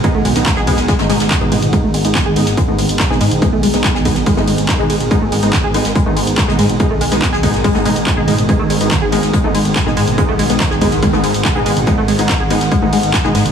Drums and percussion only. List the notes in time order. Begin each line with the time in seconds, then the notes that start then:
0.04 kick, closed hi-hat
0.25 closed hi-hat, mid tom, open hi-hat, ride
0.36 snare, closed hi-hat
0.46 kick, snare, clap, closed hi-hat
0.56 snare
0.67 kick, closed hi-hat, open hi-hat, ride
0.77 snare, closed hi-hat
0.88 kick, snare, closed hi-hat
0.99 snare, closed hi-hat
1.10 snare, closed hi-hat, mid tom, open hi-hat, ride
1.20 snare, closed hi-hat
1.30 kick, snare, clap, closed hi-hat
1.40 closed hi-hat, mid tom
1.51 closed hi-hat, mid tom, open hi-hat, ride
1.62 closed hi-hat, mid tom
1.73 kick, closed hi-hat
1.94 closed hi-hat, open hi-hat, ride
2.05 closed hi-hat
2.15 kick, snare, clap, closed hi-hat
2.36 closed hi-hat, open hi-hat, ride
2.47 snare, closed hi-hat
2.57 kick, closed hi-hat
2.79 closed hi-hat, open hi-hat, ride
2.89 closed hi-hat
3.00 kick, snare, clap, closed hi-hat
3.10 snare, mid tom
3.20 snare, closed hi-hat, open hi-hat, ride
3.31 closed hi-hat, mid tom
3.42 kick, closed hi-hat
3.63 closed hi-hat, open hi-hat, ride
3.73 snare, closed hi-hat
3.84 kick, snare, clap, closed hi-hat
3.95 snare
4.05 kick, closed hi-hat, open hi-hat, ride
4.16 snare, closed hi-hat
4.26 kick, closed hi-hat, open hi-hat
4.37 snare
4.47 closed hi-hat, open hi-hat, ride
4.58 closed hi-hat
4.69 kick, snare, clap, closed hi-hat
4.79 closed hi-hat, mid tom
4.89 closed hi-hat, open hi-hat, ride
5.00 closed hi-hat, mid tom
5.11 kick, closed hi-hat
5.32 closed hi-hat, open hi-hat, ride
5.43 closed hi-hat
5.53 kick, snare, clap, closed hi-hat
5.74 closed hi-hat, open hi-hat, ride
5.85 snare, closed hi-hat
5.95 kick, closed hi-hat
6.17 closed hi-hat, open hi-hat, ride
6.27 closed hi-hat
6.38 kick, snare, clap, closed hi-hat
6.48 snare, mid tom
6.58 snare, closed hi-hat, open hi-hat, ride
6.69 closed hi-hat, mid tom
6.79 kick, closed hi-hat
7.00 closed hi-hat, open hi-hat, ride
7.11 snare, closed hi-hat
7.22 kick, snare, clap, closed hi-hat
7.33 snare
7.43 kick, closed hi-hat, open hi-hat, ride
7.54 snare, closed hi-hat
7.64 kick, closed hi-hat, open hi-hat
7.75 snare
7.86 closed hi-hat, mid tom, open hi-hat, ride
7.96 closed hi-hat
8.06 kick, clap, closed hi-hat
8.17 mid tom
8.28 closed hi-hat, mid tom, open hi-hat, ride
8.38 closed hi-hat, mid tom
8.49 kick, closed hi-hat
8.70 closed hi-hat, open hi-hat, ride
8.81 closed hi-hat
8.90 kick, snare, clap, closed hi-hat
9.12 closed hi-hat, open hi-hat, ride
9.23 snare, closed hi-hat
9.33 kick, closed hi-hat
9.54 closed hi-hat, open hi-hat, ride
9.65 closed hi-hat
9.75 kick, snare, clap, closed hi-hat
9.86 snare, mid tom
9.97 snare, closed hi-hat, open hi-hat, ride
10.08 closed hi-hat, mid tom
10.18 kick, closed hi-hat
10.39 closed hi-hat, open hi-hat, ride
10.50 snare, closed hi-hat
10.60 kick, snare, clap, closed hi-hat
10.71 snare
10.81 kick, closed hi-hat, open hi-hat, ride
10.92 snare, closed hi-hat
11.02 kick, closed hi-hat, open hi-hat
11.13 snare
11.24 closed hi-hat, open hi-hat, ride
11.34 closed hi-hat
11.45 kick, snare, clap, closed hi-hat
11.55 closed hi-hat, mid tom
11.66 closed hi-hat, open hi-hat, ride
11.77 closed hi-hat, mid tom
11.86 kick, closed hi-hat
12.08 closed hi-hat, open hi-hat, ride
12.19 closed hi-hat
12.29 kick, snare, clap, closed hi-hat
12.50 closed hi-hat, open hi-hat, ride
12.61 snare, closed hi-hat
12.71 kick, closed hi-hat
12.93 open hi-hat, ride
13.03 closed hi-hat
13.13 kick, snare, clap, closed hi-hat
13.24 snare, mid tom
13.35 snare, closed hi-hat, open hi-hat, ride
13.46 closed hi-hat, mid tom